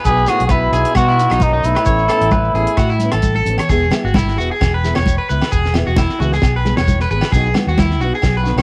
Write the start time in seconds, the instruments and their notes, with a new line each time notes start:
0.04 fingered electric bass B1, trombone B2, nylon-string guitar F#3 B3 D#4 F#4, muted trumpet G#4, clean electric guitar B4, kick, closed hi-hat, muted conga, shekere
0.18 shekere
0.26 trombone A2, nylon-string guitar D#4 F#4, muted trumpet F#4, clean electric guitar G#4, cross-stick, closed hi-hat, muted conga, low agogo, shekere
0.31 nylon-string guitar B3
0.40 fingered electric bass B1, closed hi-hat, shekere
0.46 trombone A2, muted trumpet F#4, clean electric guitar B4, kick, cross-stick, closed hi-hat, high conga, low agogo, shekere
0.51 trombone B2, muted trumpet E4
0.72 fingered electric bass B1, nylon-string guitar B3 D#4 F#4, clean electric guitar G#4, closed hi-hat, shekere
0.85 closed hi-hat, shekere
0.95 fingered electric bass B2, trombone B2, muted trumpet F#4, clean electric guitar F#4, kick, cross-stick, closed hi-hat, muted conga, high conga, low agogo, shekere
1.08 clean electric guitar E4, shekere
1.18 nylon-string guitar B3 D#4 F#4, closed hi-hat, shekere
1.30 fingered electric bass B1, clean electric guitar D#4, cross-stick, closed hi-hat, low agogo, shekere
1.40 muted trumpet D#4, kick, closed hi-hat, high conga, shekere
1.44 trombone F#2
1.53 clean electric guitar D#4
1.63 fingered electric bass B1, nylon-string guitar B3 D#4, muted trumpet E4, closed hi-hat, muted conga, shekere
1.67 trombone A2
1.75 clean electric guitar B4, cross-stick, closed hi-hat, low agogo, shekere
1.85 fingered electric bass A1, nylon-string guitar E3 B3 C#4, clean electric guitar C#5, kick, closed hi-hat, muted conga, shekere
1.89 nylon-string guitar A4
1.99 shekere
2.08 nylon-string guitar C#4 A4, clean electric guitar A4, cross-stick, closed hi-hat, muted conga, low agogo, shekere
2.13 nylon-string guitar B3
2.21 fingered electric bass A1, closed hi-hat, shekere
2.31 clean electric guitar B4, kick, cross-stick, closed hi-hat, high conga, low conga, low agogo, shekere
2.44 shekere
2.54 fingered electric bass A1, nylon-string guitar B3 C#4 A4, clean electric guitar G#4, closed hi-hat, shekere
2.67 closed hi-hat
2.77 fingered electric bass A2, clean electric guitar F#4, kick, cross-stick, closed hi-hat, low agogo, shekere
2.90 clean electric guitar E4, shekere
2.99 nylon-string guitar C#4, closed hi-hat, high conga, shekere
3.04 nylon-string guitar B3
3.12 fingered electric bass A1, clean electric guitar A4, cross-stick, closed hi-hat, low agogo, shekere
3.22 kick, closed hi-hat, high conga, shekere
3.35 clean electric guitar A4, high conga, shekere
3.46 fingered electric bass A1, nylon-string guitar A4, closed hi-hat, low conga, shekere
3.50 nylon-string guitar B3 C#4
3.58 clean electric guitar C#5, cross-stick, closed hi-hat, low conga, low agogo, shekere
3.68 fingered electric bass E1, nylon-string guitar E3 B3 E4 G#4, clean electric guitar G#4, kick, muted conga, shekere
3.84 shekere
3.91 nylon-string guitar B3 E4 G#4, snare, muted conga, high conga, low agogo, shekere
4.04 fingered electric bass G#1, clean electric guitar F#4, shekere
4.14 clean electric guitar E4, kick, snare, high conga, low agogo, shekere
4.28 snare, shekere
4.36 fingered electric bass E1, nylon-string guitar B3 E4 G#4, clean electric guitar F#4
4.40 shekere
4.51 clean electric guitar G#4
4.61 fingered electric bass E1, kick, snare, muted conga, low agogo, shekere
4.74 clean electric guitar B4
4.84 nylon-string guitar B3 E4 G#4, snare, shekere
4.95 fingered electric bass E1, clean electric guitar C#5, snare, low agogo
5.06 kick, high conga, shekere
5.18 clean electric guitar B4
5.29 fingered electric bass C#2, nylon-string guitar B3 E4, clean electric guitar B4, muted conga, shekere
5.42 snare, low agogo, shekere
5.52 fingered electric bass E1, clean electric guitar G#4, kick, muted conga, shekere
5.65 snare, shekere
5.74 nylon-string guitar B3 E4 G#4, snare, muted conga, low conga, low agogo, shekere
5.87 fingered electric bass E1, clean electric guitar F#4, shekere
5.96 clean electric guitar E4, kick, snare, high conga, low agogo, shekere
6.09 snare, shekere
6.20 fingered electric bass C#2, nylon-string guitar B3 E4 G#4, clean electric guitar F#4, low conga, shekere
6.32 clean electric guitar G#4, snare, shekere
6.42 fingered electric bass B1, kick, snare, muted conga, low agogo, shekere
6.56 clean electric guitar B4
6.65 nylon-string guitar B3 G#4, snare, high conga, shekere
6.77 fingered electric bass E1, clean electric guitar C#5, snare, low agogo
6.88 kick, high conga, shekere
7.00 clean electric guitar B4, snare
7.11 fingered electric bass G#1, nylon-string guitar B3 G#4, clean electric guitar B4, muted conga, shekere
7.21 snare, low agogo, shekere
7.32 fingered electric bass B1, nylon-string guitar F#3 B3 D#4, clean electric guitar G#4, kick, snare, muted conga, shekere
7.36 nylon-string guitar F#4
7.46 shekere
7.54 nylon-string guitar B3 D#4 F#4, snare, muted conga, high conga, low agogo, shekere
7.67 fingered electric bass D#2, clean electric guitar F#4, shekere
7.78 clean electric guitar E4, kick, snare, high conga, low agogo, shekere
7.91 snare, shekere
8.00 fingered electric bass B1, nylon-string guitar B3 D#4 F#4, clean electric guitar F#4, shekere
8.14 clean electric guitar G#4, shekere
8.22 fingered electric bass B1, kick, snare, muted conga, low agogo, shekere
8.37 clean electric guitar B4
8.43 nylon-string guitar B3 D#4 F#4, snare, shekere
8.56 fingered electric bass B1, clean electric guitar C#5, snare, low agogo